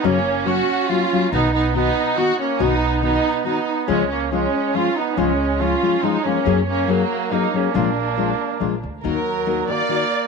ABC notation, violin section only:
X:1
M:3/4
L:1/8
Q:1/4=140
K:F#
V:1 name="Violin section"
C2 F2 E2 | D D D2 F C | D2 D2 D2 | C C C2 E D |
C2 E2 D C- | C C A,2 D C | =D4- D z | [K:Ebm] B3 =d3 |]